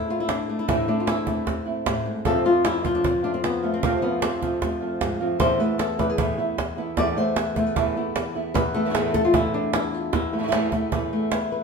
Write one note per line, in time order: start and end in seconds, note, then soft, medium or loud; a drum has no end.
0.00 0.67 A2 medium
0.00 0.49 A3 medium
0.00 0.29 C4 soft
0.00 0.19 E4 medium
0.08 0.68 A3 soft
0.08 0.69 C4 soft
0.08 0.67 E4 soft
0.08 0.20 F4 medium
0.20 0.58 E4 medium
0.29 0.87 D4 medium
0.29 cajon slap medium
0.49 0.87 A3 soft
0.49 cajon slap soft
0.59 0.68 E4 medium
0.68 0.87 A2 medium
0.68 1.85 A2 medium
0.68 0.87 E3 medium
0.68 0.88 A3 medium
0.68 0.87 C4 medium
0.68 1.06 E4 medium
0.68 0.86 E4 medium
0.68 cajon bass loud
0.87 1.27 A3 medium
0.87 1.06 A3 soft
0.87 1.07 C4 soft
0.87 1.40 D4 medium
0.87 1.07 E4 soft
1.00 1.08 F4 medium
1.07 1.26 E3 soft
1.07 1.27 A3 soft
1.07 1.26 C4 soft
1.07 2.25 E4 medium
1.07 1.25 E4 medium
1.07 cajon slap medium
1.26 2.45 A3 medium
1.26 1.46 A3 soft
1.26 1.46 C4 soft
1.26 1.46 E4 soft
1.26 cajon bass medium
1.46 2.98 C4 soft
1.46 muted nylon-string guitar stroke soft
1.46 cajon bass medium
1.46 cajon slap soft
1.65 2.26 A3 soft
1.65 2.27 C4 soft
1.65 2.24 E4 soft
1.86 2.06 A2 medium
1.86 cajon bass medium
1.86 cajon slap loud
2.06 2.25 G#2 medium
2.06 cajon slap soft
2.25 2.44 F2 medium
2.25 3.80 F2 medium
2.25 2.45 C3 medium
2.25 2.45 F3 medium
2.25 2.45 A3 medium
2.25 2.44 C4 medium
2.25 2.43 F4 medium
2.25 2.45 A4 medium
2.25 cajon bass loud
2.44 2.84 F3 medium
2.44 2.63 F3 soft
2.44 2.64 A3 soft
2.44 2.64 C4 soft
2.44 2.64 F4 soft
2.44 2.65 F4 medium
2.64 2.83 F3 soft
2.64 2.84 A3 soft
2.64 2.84 C4 medium
2.64 2.85 E4 medium
2.64 2.83 F4 soft
2.64 cajon slap loud
2.84 3.81 F3 medium
2.84 3.03 F3 soft
2.84 3.03 A3 soft
2.84 3.04 C4 soft
2.84 3.03 F4 soft
2.84 3.34 F4 medium
2.84 cajon bass medium
2.95 3.05 D4 medium
3.04 3.24 C4 medium
3.04 muted nylon-string guitar stroke soft
3.04 cajon bass medium
3.23 3.63 F3 soft
3.23 3.63 A3 soft
3.23 3.62 C4 soft
3.23 3.33 D4 medium
3.23 3.61 F4 soft
3.34 3.43 C4 medium
3.44 3.73 B3 medium
3.44 cajon slap medium
3.62 3.82 F3 soft
3.62 3.82 A3 soft
3.62 4.05 A3 soft
3.62 3.82 C4 soft
3.62 3.82 F4 soft
3.74 3.83 C4 medium
3.82 4.02 F2 medium
3.82 5.01 F2 medium
3.82 4.02 C3 medium
3.82 4.02 F3 medium
3.82 4.02 A3 medium
3.82 4.02 C4 medium
3.82 4.01 F4 medium
3.82 cajon bass loud
4.02 4.41 F3 medium
4.02 4.21 F3 soft
4.02 4.21 A3 soft
4.02 4.22 B3 medium
4.02 4.22 C4 soft
4.02 4.21 F4 soft
4.22 4.41 F3 soft
4.22 4.41 A3 soft
4.22 5.40 C4 medium
4.22 4.41 C4 soft
4.22 4.40 F4 soft
4.22 cajon slap loud
4.41 5.38 F3 medium
4.41 4.60 F3 soft
4.41 4.61 A3 soft
4.41 4.61 C4 soft
4.41 4.61 F4 soft
4.41 cajon bass medium
4.61 5.60 A3 soft
4.61 muted nylon-string guitar stroke soft
4.61 cajon bass loud
4.61 cajon slap soft
4.81 5.20 F3 soft
4.81 5.20 A3 soft
4.81 5.19 C4 soft
4.81 5.19 F4 soft
5.01 5.21 G#2 medium
5.01 cajon bass medium
5.01 cajon slap medium
5.20 5.40 F2 medium
5.20 5.40 F3 soft
5.20 5.39 A3 soft
5.20 5.39 C4 soft
5.20 5.39 F4 soft
5.39 5.58 E2 medium
5.39 6.97 E2 medium
5.39 5.59 A2 medium
5.39 5.59 E3 medium
5.39 5.59 A3 medium
5.39 5.58 B3 medium
5.39 5.58 E4 medium
5.39 5.60 C5 loud
5.39 cajon bass loud
5.59 5.78 E3 soft
5.59 5.98 A3 medium
5.59 5.78 A3 soft
5.59 5.78 B3 soft
5.59 5.78 E4 soft
5.59 5.79 B4 loud
5.78 5.99 A4 medium
5.78 muted nylon-string guitar stroke medium
5.78 cajon slap loud
5.98 6.18 E3 soft
5.98 7.16 A3 medium
5.98 6.18 A3 soft
5.98 6.18 B3 soft
5.98 6.17 E4 soft
5.98 6.09 B4 loud
5.98 cajon bass medium
6.09 6.68 G#4 medium
6.18 6.37 E2 medium
6.18 6.37 A2 medium
6.18 6.38 E3 medium
6.18 6.38 A3 medium
6.18 6.37 B3 medium
6.18 6.38 E4 soft
6.18 6.37 E4 medium
6.18 cajon bass loud
6.38 6.57 E3 soft
6.38 6.57 A3 soft
6.38 6.57 B3 soft
6.38 6.57 E4 soft
6.38 6.78 E4 soft
6.58 muted nylon-string guitar stroke medium
6.58 cajon bass medium
6.58 cajon slap medium
6.77 6.97 E3 soft
6.77 6.97 A3 soft
6.77 6.97 B3 soft
6.77 6.96 E4 soft
6.77 7.01 E4 soft
6.77 cajon slap soft
6.97 7.16 E2 medium
6.97 8.55 E2 medium
6.97 7.16 A2 medium
6.97 7.17 E3 medium
6.97 7.17 A3 medium
6.97 7.16 B3 medium
6.97 7.15 E4 medium
6.97 7.17 D5 loud
6.97 cajon bass loud
6.97 cajon slap soft
7.16 7.36 E3 soft
7.16 7.56 A3 medium
7.16 7.36 A3 soft
7.16 7.36 B3 soft
7.16 7.36 E4 soft
7.16 7.37 C5 medium
7.36 7.57 B4 medium
7.36 muted nylon-string guitar stroke medium
7.36 cajon slap loud
7.56 7.75 E3 soft
7.56 8.57 A3 medium
7.56 7.76 A3 soft
7.56 7.76 B3 soft
7.56 7.75 E4 soft
7.56 7.66 C5 medium
7.56 cajon bass medium
7.66 8.26 B4 medium
7.76 7.95 E2 medium
7.76 7.95 A2 medium
7.76 7.95 E3 medium
7.76 7.96 A3 medium
7.76 7.95 B3 medium
7.76 7.94 E4 medium
7.76 cajon bass loud
7.96 8.15 E3 soft
7.96 8.16 A3 soft
7.96 8.15 B3 soft
7.96 8.15 E4 soft
7.96 9.28 E4 soft
8.16 muted nylon-string guitar stroke medium
8.16 cajon slap medium
8.35 8.55 E3 soft
8.35 8.55 A3 soft
8.35 8.55 B3 soft
8.35 8.54 E4 soft
8.35 cajon slap soft
8.54 10.13 E2 medium
8.54 9.14 B4 loud
8.54 muted nylon-string guitar stroke medium
8.54 cajon bass loud
8.74 8.84 E3 soft
8.74 9.14 A3 medium
8.74 8.85 A3 soft
8.74 8.85 B3 soft
8.74 8.85 E4 soft
8.74 8.94 A4 medium
8.85 8.89 A2 soft
8.85 8.89 E3 soft
8.85 8.89 A3 soft
8.85 8.90 B3 medium
8.85 8.90 E4 soft
8.90 8.93 A2 medium
8.90 8.94 E3 medium
8.90 8.94 A3 medium
8.90 8.94 B3 medium
8.90 8.94 E4 medium
8.94 9.13 E2 medium
8.94 9.14 A2 medium
8.94 9.14 E3 medium
8.94 9.14 A3 medium
8.94 9.13 B3 medium
8.94 9.12 E4 medium
8.94 9.14 G#4 medium
8.94 cajon slap loud
9.14 9.33 E3 soft
9.14 10.33 A3 medium
9.14 9.33 A3 soft
9.14 9.33 B3 soft
9.14 9.33 E4 soft
9.14 9.24 A4 loud
9.14 cajon bass medium
9.25 9.34 F4 medium
9.33 9.72 E2 medium
9.33 9.72 A2 medium
9.33 9.72 E3 medium
9.33 9.72 A3 medium
9.33 9.72 B3 medium
9.33 9.73 E4 loud
9.33 9.73 E4 medium
9.33 cajon bass loud
9.54 10.13 D4 medium
9.73 10.12 E4 medium
9.73 muted nylon-string guitar stroke medium
9.73 cajon slap loud
9.93 10.13 F4 medium
10.13 11.63 E2 medium
10.13 11.32 E4 medium
10.13 muted nylon-string guitar stroke medium
10.13 cajon bass loud
10.13 cajon slap soft
10.32 10.38 E3 soft
10.32 10.52 A3 medium
10.32 10.38 A3 soft
10.32 10.39 B3 soft
10.32 10.39 E4 soft
10.39 10.42 A2 soft
10.39 10.42 E3 soft
10.39 10.43 A3 soft
10.39 10.43 B3 soft
10.39 10.43 E4 soft
10.43 10.47 A2 medium
10.43 10.47 E3 medium
10.43 10.47 A3 medium
10.43 10.47 B3 medium
10.43 10.48 E4 medium
10.48 10.51 A2 medium
10.48 10.51 E3 medium
10.48 10.52 A3 medium
10.48 10.52 B3 medium
10.48 10.52 E4 medium
10.52 10.71 E2 medium
10.52 10.71 A2 medium
10.52 10.72 E3 medium
10.52 10.72 A3 medium
10.52 10.71 A3 soft
10.52 10.71 B3 medium
10.52 10.71 E4 medium
10.52 cajon slap loud
10.72 10.91 E3 soft
10.72 11.12 A3 medium
10.72 10.92 A3 soft
10.72 10.91 B3 soft
10.72 10.91 E4 soft
10.72 cajon bass medium
10.91 11.30 E2 medium
10.91 11.30 A2 medium
10.91 11.30 E3 medium
10.91 11.31 A3 medium
10.91 11.31 B3 medium
10.91 11.31 E4 medium
10.91 cajon bass medium
11.13 11.63 A3 soft
11.31 11.51 B4 soft
11.31 muted nylon-string guitar stroke medium
11.31 cajon slap loud
11.52 11.63 B4 soft
11.52 cajon slap soft